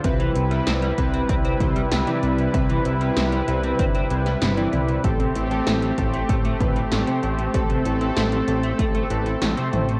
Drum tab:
HH |xxxxxxxxxxxxxxxx|xxxxxxxxxxxxxxxx|xxxxxxxxxxxxxxxx|xxxxxxxxxxxxxxxx|
SD |----o-------o---|----o------oo---|----o-------o---|----o-------o---|
T2 |----------o-----|--------------o-|----------o-----|--------------o-|
BD |o-----o-o-o-----|o-------o-------|o-----o-o-o-----|o-------o-------|